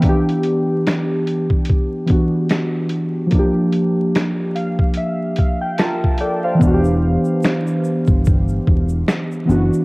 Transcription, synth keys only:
Already playing: E3
0.01 B3
0.05 D4 G4
2.06 E3 B3 D4
2.12 F#4
3.27 F3
3.31 A#3 D4
3.39 G4
4.55 F5
4.97 E5
5.39 F5
5.61 G5
5.79 F4 A#4 A5
6.20 A4 D5 G5
6.44 C5 F5
6.54 E3
6.59 B3 D4
6.67 F#4
6.73 G4
9.45 E3 B3
9.50 D4 F#4

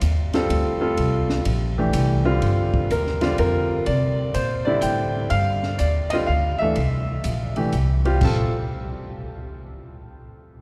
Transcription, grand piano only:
Already playing: F5
0.34 G3 C4 F4 A4
0.80 G3 C4 F4 A4
1.78 E3 A3 D4 G4
2.25 D3 G3 C4 F4
2.91 A#4
3.21 D3 G3 C4 F4 D5
3.39 A#4
3.86 D5
4.34 C5
4.65 D3 G3 C4 E4 D5
4.81 G5
5.30 F5
5.78 D5
6.10 D3 G3 C4 F4 D#5
6.27 F5
6.58 E3 A3 D4 A4 E5
7.57 E3 A3 D4 G4
8.05 G3 C4 F4 G4
8.23 G3 C4 F4 A4 A5

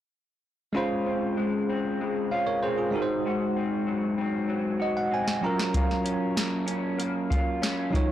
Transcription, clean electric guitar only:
0.75 C#3 F4
1.06 C4
1.37 G#3
1.70 C4
2.01 G#3
2.32 F4
2.63 C4
2.95 G#2
3.26 G#2 F#4
3.57 C4
3.87 F#3
4.18 C4
4.48 F#3
4.80 F#4
5.11 C4
5.43 F#3
5.74 F#3 F4
6.04 C#4
6.37 A#3
6.67 C#4
6.98 A#3
7.30 F4
7.62 C#4
7.93 D#3

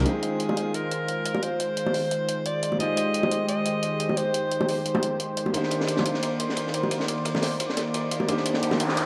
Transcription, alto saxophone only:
0.06 G#4
0.75 A#4
1.43 C5
2.46 D5
2.80 D#5
3.49 D#5
4.17 C5
4.69 C5

